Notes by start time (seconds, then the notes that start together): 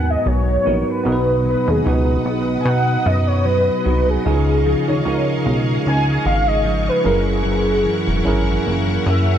Already playing: D#2 G#2 F#3 B3 D#4 F#4 A#4 F#5
0.10 D#5
0.25 B1 F#3 C#5
0.65 A#1 B3 D#4 F#4 A#4
0.90 B4
1.03 B1 B2 B3 D#4 F#4 A#4 B4 D#5 F#5 D#6
1.12 B4
1.45 F#3 B4
1.68 D#2 G#4
1.84 C#2 B3 D#4 F#4 B4
2.25 B1 B3
2.61 G#5
2.65 B2 D#4 F#5
3.05 F#2 B3 D#5
3.27 C#5
3.45 F#3 B4
3.84 C2 B3 D#4 F#4 B4
4.09 G#4
4.25 C#2 C#3 C#4 D#4 F4 G#4 F5 C#6
4.65 F3 G#4
4.88 D#2 C#5
5.05 C#2 C#4 D#4 F4 A#4
5.45 B1 G#3
5.85 C#2 D#4 G#5
6.26 G#1 G#3 F5
6.47 D#5
6.65 F3
6.88 B4
7.04 F#1 F#2 C#4 E4 G#4 A#4 F#5
7.29 G#4
7.45 F#2
7.85 E3
8.07 E1
8.25 G#1 C#4 E4 G#4 A#4
8.65 F#1 A#3
9.06 F#2 C#4 E5